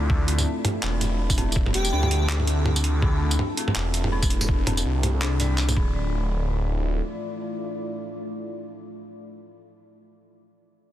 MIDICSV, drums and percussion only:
0, 0, Header, 1, 2, 480
1, 0, Start_track
1, 0, Key_signature, -1, "minor"
1, 0, Tempo, 365854
1, 129, Time_signature, 4, 2, 24, 8
1, 14328, End_track
2, 0, Start_track
2, 0, Title_t, "Drums"
2, 129, Note_on_c, 9, 36, 116
2, 260, Note_off_c, 9, 36, 0
2, 368, Note_on_c, 9, 42, 79
2, 499, Note_off_c, 9, 42, 0
2, 504, Note_on_c, 9, 45, 51
2, 504, Note_on_c, 9, 54, 68
2, 636, Note_off_c, 9, 45, 0
2, 636, Note_off_c, 9, 54, 0
2, 848, Note_on_c, 9, 42, 65
2, 848, Note_on_c, 9, 45, 79
2, 979, Note_off_c, 9, 42, 0
2, 979, Note_off_c, 9, 45, 0
2, 1087, Note_on_c, 9, 39, 116
2, 1087, Note_on_c, 9, 42, 35
2, 1218, Note_off_c, 9, 39, 0
2, 1218, Note_off_c, 9, 42, 0
2, 1327, Note_on_c, 9, 42, 76
2, 1327, Note_on_c, 9, 45, 51
2, 1327, Note_on_c, 9, 54, 39
2, 1458, Note_off_c, 9, 42, 0
2, 1458, Note_off_c, 9, 45, 0
2, 1458, Note_off_c, 9, 54, 0
2, 1704, Note_on_c, 9, 36, 103
2, 1704, Note_on_c, 9, 54, 68
2, 1808, Note_on_c, 9, 42, 61
2, 1808, Note_on_c, 9, 45, 51
2, 1835, Note_off_c, 9, 36, 0
2, 1835, Note_off_c, 9, 54, 0
2, 1939, Note_off_c, 9, 42, 0
2, 1939, Note_off_c, 9, 45, 0
2, 1995, Note_on_c, 9, 54, 66
2, 2047, Note_on_c, 9, 36, 114
2, 2126, Note_off_c, 9, 54, 0
2, 2178, Note_off_c, 9, 36, 0
2, 2183, Note_on_c, 9, 45, 77
2, 2285, Note_on_c, 9, 42, 77
2, 2314, Note_off_c, 9, 45, 0
2, 2416, Note_off_c, 9, 42, 0
2, 2423, Note_on_c, 9, 54, 69
2, 2554, Note_off_c, 9, 54, 0
2, 2664, Note_on_c, 9, 45, 54
2, 2769, Note_on_c, 9, 42, 67
2, 2795, Note_off_c, 9, 45, 0
2, 2900, Note_off_c, 9, 42, 0
2, 3009, Note_on_c, 9, 39, 118
2, 3009, Note_on_c, 9, 42, 35
2, 3140, Note_off_c, 9, 39, 0
2, 3140, Note_off_c, 9, 42, 0
2, 3144, Note_on_c, 9, 45, 54
2, 3246, Note_on_c, 9, 42, 78
2, 3275, Note_off_c, 9, 45, 0
2, 3377, Note_off_c, 9, 42, 0
2, 3485, Note_on_c, 9, 45, 77
2, 3616, Note_off_c, 9, 45, 0
2, 3622, Note_on_c, 9, 54, 69
2, 3725, Note_on_c, 9, 42, 62
2, 3753, Note_off_c, 9, 54, 0
2, 3856, Note_off_c, 9, 42, 0
2, 3968, Note_on_c, 9, 36, 112
2, 3968, Note_on_c, 9, 45, 58
2, 4099, Note_off_c, 9, 36, 0
2, 4099, Note_off_c, 9, 45, 0
2, 4344, Note_on_c, 9, 54, 70
2, 4449, Note_on_c, 9, 45, 54
2, 4475, Note_off_c, 9, 54, 0
2, 4580, Note_off_c, 9, 45, 0
2, 4689, Note_on_c, 9, 42, 65
2, 4821, Note_off_c, 9, 42, 0
2, 4825, Note_on_c, 9, 45, 83
2, 4927, Note_on_c, 9, 39, 118
2, 4927, Note_on_c, 9, 42, 36
2, 4956, Note_off_c, 9, 45, 0
2, 5058, Note_off_c, 9, 39, 0
2, 5058, Note_off_c, 9, 42, 0
2, 5167, Note_on_c, 9, 42, 78
2, 5167, Note_on_c, 9, 54, 39
2, 5299, Note_off_c, 9, 42, 0
2, 5299, Note_off_c, 9, 54, 0
2, 5302, Note_on_c, 9, 45, 54
2, 5433, Note_off_c, 9, 45, 0
2, 5543, Note_on_c, 9, 54, 75
2, 5545, Note_on_c, 9, 36, 100
2, 5647, Note_on_c, 9, 42, 65
2, 5675, Note_off_c, 9, 54, 0
2, 5676, Note_off_c, 9, 36, 0
2, 5778, Note_off_c, 9, 42, 0
2, 5785, Note_on_c, 9, 45, 53
2, 5785, Note_on_c, 9, 54, 70
2, 5888, Note_on_c, 9, 36, 112
2, 5916, Note_off_c, 9, 45, 0
2, 5916, Note_off_c, 9, 54, 0
2, 6019, Note_off_c, 9, 36, 0
2, 6126, Note_on_c, 9, 42, 82
2, 6126, Note_on_c, 9, 45, 87
2, 6257, Note_off_c, 9, 42, 0
2, 6257, Note_off_c, 9, 45, 0
2, 6263, Note_on_c, 9, 54, 71
2, 6395, Note_off_c, 9, 54, 0
2, 6604, Note_on_c, 9, 42, 71
2, 6604, Note_on_c, 9, 45, 59
2, 6735, Note_off_c, 9, 42, 0
2, 6735, Note_off_c, 9, 45, 0
2, 6845, Note_on_c, 9, 39, 114
2, 6845, Note_on_c, 9, 42, 38
2, 6976, Note_off_c, 9, 39, 0
2, 6976, Note_off_c, 9, 42, 0
2, 7081, Note_on_c, 9, 42, 81
2, 7081, Note_on_c, 9, 45, 55
2, 7081, Note_on_c, 9, 54, 38
2, 7213, Note_off_c, 9, 42, 0
2, 7213, Note_off_c, 9, 45, 0
2, 7213, Note_off_c, 9, 54, 0
2, 7320, Note_on_c, 9, 39, 57
2, 7320, Note_on_c, 9, 54, 39
2, 7452, Note_off_c, 9, 39, 0
2, 7452, Note_off_c, 9, 54, 0
2, 7460, Note_on_c, 9, 45, 86
2, 7460, Note_on_c, 9, 54, 71
2, 7565, Note_on_c, 9, 36, 112
2, 7591, Note_off_c, 9, 45, 0
2, 7591, Note_off_c, 9, 54, 0
2, 7696, Note_off_c, 9, 36, 0
2, 14328, End_track
0, 0, End_of_file